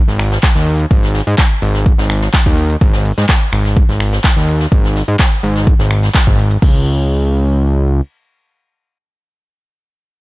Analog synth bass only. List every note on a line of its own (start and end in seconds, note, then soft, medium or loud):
0.08 0.38 G#1 medium
0.56 0.86 D#2 medium
0.91 1.22 G#1 loud
1.27 1.35 G#2 medium
1.62 1.93 G#1 medium
1.98 2.29 G#1 medium
2.46 2.76 D#2 medium
2.81 3.12 G#1 loud
3.18 3.26 G#2 medium
3.53 3.84 G#1 medium
3.89 4.19 G#1 medium
4.37 4.67 D#2 medium
4.72 5.03 G#1 loud
5.08 5.16 G#2 medium
5.43 5.74 G#1 medium
5.79 6.10 G#1 medium
6.27 6.57 G#1 medium
6.62 8.01 C#2 loud